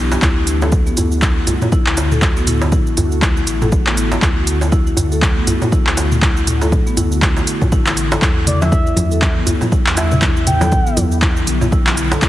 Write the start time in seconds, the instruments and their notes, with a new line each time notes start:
Already playing: sub bass B1, ambient pad E3 B3 D4 G4
0.12 djembe slap, shaker
0.22 sub bass D2, ambient pad D3 A3 F#4, marimba E4, kick, clap, djembe tone, shaker
0.37 marimba E4
0.47 open hi-hat, shaker
0.62 marimba A4, djembe slap, shaker
0.72 kick, shaker
0.87 marimba B3, shaker
0.97 sub bass D2, marimba E4, open hi-hat, djembe bass, shaker
1.12 shaker
1.22 marimba E4, kick, clap, djembe tone, shaker
1.47 sub bass C2, open hi-hat, djembe bass, shaker
1.62 mid tom, djembe tone, shaker
1.72 marimba E4, kick, shaker
1.86 sub bass D2, marimba E4, clap
1.97 open hi-hat, djembe slap, shaker
2.12 marimba A4, mid tom, shaker
2.22 kick, clap, djembe tone, shaker
2.37 marimba B3, shaker
2.47 marimba E4, open hi-hat, mid tom, shaker
2.61 djembe slap, djembe tone, shaker
2.72 marimba E4, kick, mid tom, shaker
2.87 shaker
2.97 sub bass D2, open hi-hat, djembe bass, shaker
3.12 shaker
3.22 marimba E4, kick, clap, djembe tone, shaker
3.37 marimba E4, shaker
3.47 sub bass A1, open hi-hat, shaker
3.62 marimba A4, mid tom, djembe tone, shaker
3.72 kick, shaker
3.87 marimba B3, clap, djembe slap
3.97 marimba E4, open hi-hat, shaker
4.12 djembe slap, shaker
4.22 sub bass D2, kick, clap, djembe tone, shaker
4.47 open hi-hat, shaker
4.61 djembe slap, shaker
4.72 marimba E4, kick, shaker
4.87 marimba E4, shaker
4.97 sub bass D2, open hi-hat, djembe bass, shaker
5.12 marimba A4, shaker
5.22 kick, clap, djembe tone, shaker
5.37 marimba B3
5.47 sub bass C2, marimba E4, open hi-hat, djembe bass, shaker
5.62 mid tom, djembe tone, shaker
5.72 marimba E4, kick, shaker
5.87 sub bass D2, clap
5.97 open hi-hat, djembe slap, shaker
6.12 mid tom, shaker
6.22 marimba E4, kick, clap, djembe tone, shaker
6.37 marimba E4, shaker
6.47 open hi-hat, mid tom, shaker
6.61 marimba A4, djembe slap, djembe tone, shaker
6.72 kick, mid tom, shaker
6.87 marimba B3, shaker
6.97 sub bass D2, marimba E4, open hi-hat, djembe bass, shaker
7.12 shaker
7.22 kick, clap, djembe tone, shaker
7.37 djembe slap, shaker
7.47 open hi-hat, shaker
7.61 kick, mid tom, djembe tone, shaker
7.72 sub bass A1, marimba E4, kick, shaker
7.86 marimba E4, clap, djembe slap, shaker
7.97 open hi-hat, shaker
8.12 marimba A4, djembe slap, shaker
8.22 sub bass E2, ambient pad G3 B3 E4, marimba E4, kick, clap, djembe tone, shaker
8.47 analog synth lead D5, open hi-hat, low conga, shaker
8.61 analog synth lead E5, djembe slap, high conga, shaker
8.72 marimba E4, kick, high conga, shaker
8.86 marimba E4, shaker
8.96 sub bass E2, open hi-hat, high conga, djembe bass, shaker
9.11 marimba A4, shaker
9.22 kick, clap, high conga, djembe tone, shaker
9.37 marimba B3
9.46 sub bass D2, marimba E4, open hi-hat, djembe bass, shaker
9.61 mid tom, djembe tone, high conga, shaker
9.72 marimba E4, kick, shaker
9.86 sub bass E2, clap
9.97 analog synth lead E5, open hi-hat, djembe slap, shaker
10.11 mid tom, low conga, shaker
10.22 marimba E4, kick, clap, djembe tone, shaker
10.36 marimba E4, shaker
10.47 analog synth lead G5, open hi-hat, mid tom, low conga, shaker
10.61 marimba A4, djembe slap, djembe tone, high conga, shaker
10.72 kick, mid tom, high conga, shaker
10.87 marimba B3, shaker
10.97 sub bass E2, marimba E4, open hi-hat, high conga, djembe bass, shaker
11.12 shaker
11.22 marimba E4, kick, clap, djembe tone, shaker
11.37 shaker
11.47 sub bass B1, open hi-hat, high conga, shaker
11.61 mid tom, djembe tone, shaker
11.72 marimba E4, kick, shaker
11.87 marimba E4, clap, djembe slap, high conga
11.97 open hi-hat, shaker
12.12 marimba A4, djembe slap, shaker
12.22 sub bass E2, ambient pad A3, kick, clap, djembe tone, shaker